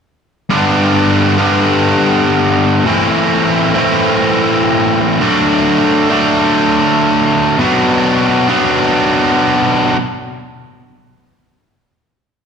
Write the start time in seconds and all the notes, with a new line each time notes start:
0.49 G2 D3 G3 B3 D4
1.37 G2 D3 G3 B3 D4
2.85 A2 E3 A3 C4 E4
3.74 A2 E3 A3 C4 E4
5.21 D3 F#3 A3 D4
6.09 D3 F#3 A3 D4
7.58 B2 F#3 B3 D4
8.48 B2 F#3 B3 D4